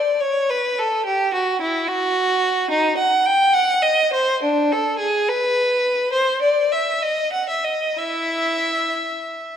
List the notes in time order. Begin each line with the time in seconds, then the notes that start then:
Already playing: D5
0.20 C#5
0.50 B4
0.79 A4
1.06 G4
1.34 F#4
1.62 E4
1.87 F#4
2.71 D#4
2.97 F#5
3.26 G5
3.53 F#5
3.82 D#5
4.13 C5
4.43 D4
4.72 A4
4.99 G#4
5.29 B4
6.12 C5
6.42 D5
6.72 E5
7.02 D#5
7.33 F#5
7.49 E5
7.64 D#5
7.98 E4 E5